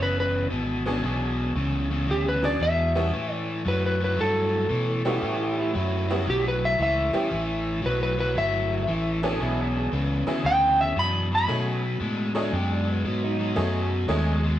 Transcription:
Already playing: overdriven electric guitar E2
0.00 fingered electric bass F#1, overdriven electric guitar C#3, electric slide guitar B4
0.20 electric slide guitar B4
0.50 fingered electric bass G#1, overdriven electric guitar E2 B2
0.86 overdriven electric guitar E2 B2, honky-tonk piano F#3 B3 C#4 D4 G#4
1.03 fingered electric bass B1, overdriven electric guitar E2 B2
1.55 fingered electric bass C#2, overdriven electric guitar E2 C#3
1.90 overdriven electric guitar E2 C#3
2.07 fingered electric bass D2, overdriven electric guitar E2 C#3, electric slide guitar G4
2.29 electric slide guitar B4
2.43 honky-tonk piano F#3 B3 C#4 D4 G#4, electric slide guitar D5
2.60 overdriven electric guitar E2 B2, fingered electric bass E2, electric slide guitar E5
2.95 overdriven electric guitar E2 B2, honky-tonk piano G3 B3 C#4 E4 F#4
3.12 fingered electric bass A2, overdriven electric guitar A2 E3
3.33 electric slide guitar D5
3.65 fingered electric bass F#2, overdriven electric guitar A2 F#3, electric slide guitar B4
3.86 electric slide guitar B4
4.00 overdriven electric guitar A2 F#3
4.04 electric slide guitar B4
4.17 fingered electric bass G2, overdriven electric guitar A2 F#3, electric slide guitar A4
4.69 overdriven electric guitar A2 E3, fingered electric bass B2
5.05 overdriven electric guitar A2 E3, honky-tonk piano G3 B3 C#4 E4 F#4, clean electric guitar E4 G4
5.21 overdriven electric guitar A2 E3, fingered electric bass A2, clean electric guitar E4 G4
5.40 clean electric guitar E4 G4
5.57 clean electric guitar C#4 E4
5.74 fingered electric bass F#2, overdriven electric guitar A2 F#3, clean electric guitar E4
6.08 overdriven electric guitar A2 F#3, honky-tonk piano G3 B3 C#4 E4 F#4
6.26 fingered electric bass B1, overdriven electric guitar A2 F#3
6.30 electric slide guitar G4
6.48 electric slide guitar B4
6.65 electric slide guitar E5
6.79 fingered electric bass C#2, overdriven electric guitar A2 E3
6.83 electric slide guitar E5
7.13 overdriven electric guitar A2 E3, honky-tonk piano G3 B3 C#4 E4 G4, muted fingered electric bass stroke
7.30 fingered electric bass A1, overdriven electric guitar A2 E3
7.82 fingered electric bass B1, overdriven electric guitar A2 F#3
7.86 electric slide guitar B4
8.03 electric slide guitar B4
8.17 overdriven electric guitar A2 F#3, electric slide guitar B4
8.35 fingered electric bass G1, overdriven electric guitar A2 F#3, electric slide guitar E5
8.87 fingered electric bass A1, overdriven electric guitar A2 E3
9.23 overdriven electric guitar A2 E3, honky-tonk piano F#3 B3 C#4 D4 G#4, clean electric guitar A4
9.39 fingered electric bass B1, overdriven electric guitar E2 B2, clean electric guitar E4
9.59 clean electric guitar C#4
9.75 clean electric guitar G#4
9.92 fingered electric bass C#2, overdriven electric guitar E2 C#3, clean electric guitar B4
10.27 overdriven electric guitar E2 C#3, honky-tonk piano F#3 B3 C#4 E4 G#4, muted fingered electric bass stroke
10.44 fingered electric bass D2, overdriven electric guitar E2 C#3, electric slide guitar G5
10.81 electric slide guitar E5
10.96 overdriven electric guitar E2 B2, fingered electric bass F#2, electric slide guitar B5
11.31 overdriven electric guitar E2 B2, electric slide guitar B5
11.48 overdriven electric guitar B2 F#3, fingered electric bass B2, honky-tonk piano F#3 A3 C#4 D#4 G#4
12.00 fingered electric bass A2, overdriven electric guitar B2 G#3
12.35 overdriven electric guitar B2 G#3, honky-tonk piano F#3 A3 C#4 D#4 G#4, clean electric guitar D4
12.52 fingered electric bass F#2, overdriven electric guitar B2 G#3, clean electric guitar G4
12.71 clean electric guitar D4
12.89 clean electric guitar B3
13.04 fingered electric bass G#2, overdriven electric guitar B2 F#3
13.23 clean electric guitar D#4
13.39 overdriven electric guitar B2 F#3
13.56 fingered electric bass F#2, overdriven electric guitar B2 F#3, honky-tonk piano F#3 A3 C#4 D#4 G#4
14.08 fingered electric bass D#2, overdriven electric guitar B2 G#3, honky-tonk piano F#3 A3 C#4 D#4 G#4
14.43 overdriven electric guitar B2 G#3

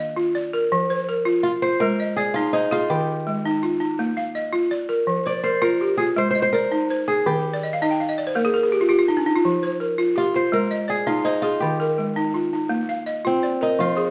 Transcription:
Already playing: kora D4, balafon D#5 F5
0.16 balafon F4
0.35 balafon D5
0.53 balafon A#4
0.72 balafon F3
0.90 balafon C5
1.09 balafon A#4
1.25 balafon F4
1.43 kora F4
1.62 balafon F4, kora C5
1.80 balafon G#3, kora A#4
2.00 balafon D#5
2.17 kora G#4, balafon D5
2.34 balafon D#4, kora F4
2.53 kora D#4, balafon C5
2.71 kora F4, balafon G#4
2.90 balafon D#3, kora G4
3.27 balafon G#3
3.46 balafon D#4
3.63 balafon F4
3.80 balafon D#4
3.99 balafon A#3
4.17 balafon F5
4.35 balafon D#5
4.53 balafon F4
4.71 balafon D5
4.89 balafon A#4
5.07 balafon F3
5.26 balafon C5, kora D5
5.44 balafon A#4, kora C5
5.62 balafon F4, kora A#4
5.81 balafon G4
5.97 balafon F4, kora G#4
6.16 balafon G#3, kora C5
6.31 kora C5
6.35 balafon D#5
6.42 kora C5
6.53 kora A#4, balafon D5
6.72 balafon D#4
6.90 balafon C5
7.08 balafon G#4, kora G#4
7.26 balafon D#3, kora G4
7.54 balafon D5
7.63 balafon D#5
7.73 balafon F5
7.82 balafon D#4 D#5
7.91 balafon G5
8.00 balafon F5
8.09 balafon D#5
8.18 balafon D5
8.27 balafon C5
8.35 balafon A#3 A#4
8.45 balafon G#4
8.54 balafon A#4
8.63 balafon G#4
8.72 balafon G4
8.81 balafon F4
8.89 balafon F4 G4
8.99 balafon F4
9.08 balafon D#4
9.17 balafon D4
9.26 balafon D#4
9.36 balafon F4
9.45 balafon F3
9.63 balafon C5
9.80 balafon A#4
9.98 balafon F4
10.16 kora F4, balafon G4
10.34 balafon F4, kora C5
10.52 balafon G#3, kora A#4
10.71 balafon D#5
10.88 kora G#4, balafon D5
11.07 balafon D#4, kora F4
11.25 kora D#4, balafon C5
11.42 kora F4, balafon G#4
11.60 balafon D#3, kora G4
11.80 balafon A#4
11.98 balafon G#3
12.16 balafon D#4
12.34 balafon F4
12.53 balafon D#4
12.69 balafon A#3
12.89 balafon F5
13.06 balafon D#5
13.25 kora C4, balafon F4
13.43 balafon D5
13.61 kora D#4, balafon A#4
13.79 balafon F3, kora F4
13.97 balafon G#4

